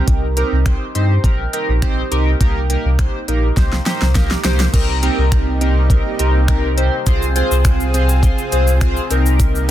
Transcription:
Already playing: C4 D#4 G4 A#4
0.08 C2, kick, closed hi-hat
0.37 C4 D#4 G4 A#4, closed hi-hat
0.52 C2
0.66 C4 D#4 G4 C5, finger snap, kick, closed hi-hat
0.95 G2 C4 D#4 G4 C5, closed hi-hat
1.24 A#1 C4 D#4 G4 A#4, kick, closed hi-hat
1.53 C4 D#4 G4 A#4, closed hi-hat
1.69 A#1
1.82 C4 D#4 G4 C5, finger snap, kick, closed hi-hat
2.11 C2 C4 D#4 G4 A#4, closed hi-hat
2.40 C2 A#3 D#4 G4 A#4, kick, closed hi-hat
2.70 A#3 D#4 G4 A#4, closed hi-hat
2.85 C2
2.99 A#3 D#4 G4 C5, finger snap, kick, closed hi-hat
3.28 A#1 A#3 D#4 G4 A#4, closed hi-hat
3.57 C2 A#3 D#4 G4 C5, kick, snare, closed hi-hat
3.73 snare
3.86 A#3 D#4 G4 C5, snare, closed hi-hat
4.02 C2, snare
4.15 A#3 D#4 G4 A#4, kick, snare, closed hi-hat
4.31 snare
4.44 C2 A#3 D#4 G4 C5, snare, closed hi-hat
4.60 snare
4.73 C2 C3 G3 A#3 C4 D#4 G4 A#4, kick, closed hi-hat, crash
5.03 C4 D#4 G4 A#4, closed hi-hat
5.18 C2
5.32 C4 D#4 G4 A#4, finger snap, kick, closed hi-hat
5.61 C4 D#4 G4 A#4, closed hi-hat
5.90 C4 D#4 G4 A#4, kick, closed hi-hat
6.19 C2 C4 D#4 G4 A#4, closed hi-hat
6.48 C4 D#4 G4 A#4, finger snap, kick, closed hi-hat
6.77 C4 D#4 G4 C5, closed hi-hat
7.06 C2 C4 F4 G#4 C5, kick, closed hi-hat, shaker
7.22 shaker
7.36 C4 F4 G#4 C5, closed hi-hat, shaker
7.51 C2, shaker
7.65 C4 F4 G#4 C5, finger snap, kick, closed hi-hat, shaker
7.80 shaker
7.94 C4 F4 G#4 C5, closed hi-hat, shaker
8.09 shaker
8.23 C4 F4 G#4 C5, kick, closed hi-hat, shaker
8.38 shaker
8.52 C2 C4 F4 G#4 C5, closed hi-hat, shaker
8.67 shaker
8.81 C4 F4 G#4 C5, finger snap, kick, closed hi-hat, shaker
8.97 shaker
9.10 C2 G3 A#3 C4 D#4 G4 A#4, closed hi-hat, shaker
9.26 shaker
9.40 kick, closed hi-hat, shaker
9.55 shaker

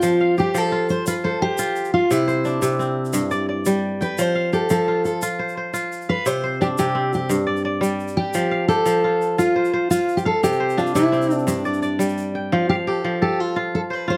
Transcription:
Already playing: C4 F4 D5 G5
0.02 F3, shaker
0.21 F5
0.38 G4, shaker
0.54 F3 A4, shaker
0.72 F4
0.89 C5, shaker
1.07 F4 B4, shaker
1.24 A4 C5
1.42 G4 C5
1.58 F4, shaker
1.76 shaker
1.85 shaker
1.94 F4 F5
2.11 C3 E4, shaker
2.28 C5, shaker
2.45 D4, shaker
2.62 C3, shaker
2.79 C4, shaker
3.05 shaker
3.13 G2, shaker
3.31 D5, shaker
3.49 D5
3.66 G3, shaker
4.01 B4 G5, shaker
4.18 F3 C5, shaker
4.35 F5
4.53 G4 A4, shaker
4.70 F3 A4, shaker
4.88 F4
5.05 A4, shaker
5.22 F4, shaker
5.39 C5
5.49 shaker
5.57 C5
5.74 F4, shaker
5.92 shaker
6.01 shaker
6.09 B4 F5
6.26 C3 C5, shaker
6.44 C5
6.61 D4 G4, shaker
6.78 C3 G4, shaker
6.95 C4
7.13 G4, shaker
7.29 G2, shaker
7.47 D5
7.56 shaker
7.65 D5
7.81 G3, shaker
8.00 shaker
8.08 shaker
8.17 G4 G5
8.34 F3, shaker
8.51 F5
8.68 G4 A4, shaker
8.86 F3, shaker
9.04 F4
9.22 shaker
9.38 F4, shaker
9.56 C5
9.65 shaker
9.73 C5
9.91 F4, shaker
10.09 shaker
10.17 G4, shaker
10.25 A4 F5
10.43 C3 G4, shaker
10.52 shaker
10.60 C5
10.70 shaker
10.78 D4 F4, shaker
10.87 shaker
10.95 C3 E4, shaker
11.12 C4, shaker
11.22 shaker
11.31 shaker
11.39 shaker
11.47 G2 D4, shaker
11.65 D5, shaker
11.74 shaker
11.82 D5, shaker
11.99 G3, shaker
12.18 shaker
12.35 G5
12.52 F3 F4
12.69 G4 F5
12.87 G4 A4
13.04 F3
13.22 G4 A4
13.40 F4
13.56 F4
13.75 A4
13.90 B4 C5
14.08 F4 C5

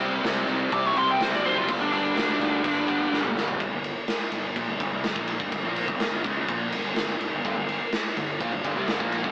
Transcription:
0.00 C2 C3 G3 C4, crash
0.24 C2 C3 G3 C4, snare, crash
0.48 C2 C3 G3 C4, crash
0.71 C2 C3 G3 C4 D6, kick, crash
0.86 C#6
0.96 C2 C3 G3 C4 C6, crash
1.11 G5
1.20 F#1 C3 G3 C4 C5, snare, crash
1.34 D5, snare
1.43 C3 G3 C4 C5, crash
1.58 F4
1.68 G1 G2 D3 G3, kick, crash
1.81 D4
1.91 G2 D3 G3 D4, crash
2.15 D2 G2 D3 G3, snare, crash
2.38 D2 G2 D3 G3, crash
2.64 G1 G2 D3 G3, kick, crash
2.88 G2 D3 G3, kick, crash
3.11 G1 G2 D3 G3, snare
3.25 mid tom
3.35 G1 G2 D3 G3, snare
3.48 floor tom
3.60 G1 G2 D3, kick, ride
3.71 G1 G2 D3
3.84 ride
4.08 snare, ride
4.32 G1 G2 D3, ride
4.56 A#1 A#2 F3, kick, ride
4.68 G1 G2 D3
4.80 G1 G2 D3, kick, ride
4.92 C2 C3 G3
5.04 G1 G2 D3, snare, ride
5.16 A#1 A#2 F3 A#3, kick
5.27 ride
5.40 G1 G2 D3, kick
5.52 G1 G2 D3, kick, ride
5.63 A#1 A#2 F3 A#3
5.76 ride
5.88 G1 G2 D3, kick
5.99 G1 G2 D3, snare, ride
6.24 C#2 C#3 G#3 C#4, kick, ride
6.47 A#1 A#2 F3 A#3, kick, ride
6.71 G1 G2 D3, ride
6.84 G1 G2 D3
6.96 G1 G2 D3, snare, ride
7.20 G1 G2 D3, ride
7.32 G1 G2 D3
7.44 G1 G2 D3, kick, ride
7.56 G1 G2 D3
7.69 ride
7.92 snare, ride
8.17 G1 G2 D3, ride
8.40 A#1 A#2 F3, kick, ride
8.52 G1 G2 D3
8.64 G1 G2 D3, kick, ride
8.75 C2 C3 G3
8.88 G1 G2 D3, snare, ride
9.00 A#1 A#2 F3 A#3, kick
9.12 ride
9.24 G1 G2 D3, kick

